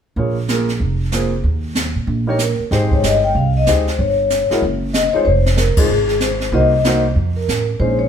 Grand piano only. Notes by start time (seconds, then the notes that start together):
0.17 A#3 F4 G#4 C#5
0.49 A#3 F4 G#4 A#4
1.13 A#3 F4 G#4 C5
2.27 A#3 D#4 G4 C#5
2.71 G#3 D#4 G4 C5
3.67 G#3 D#4 G4 D#5
4.50 G#3 E4 F#4 A#4
5.14 G#3 D#4 F4 C5
5.78 G#3 D#4 F4 C5
6.53 A#3 D#4 F#4 C5
6.85 A#3 D#4 F#4 C5
7.80 G#3 C#4 D#4 C5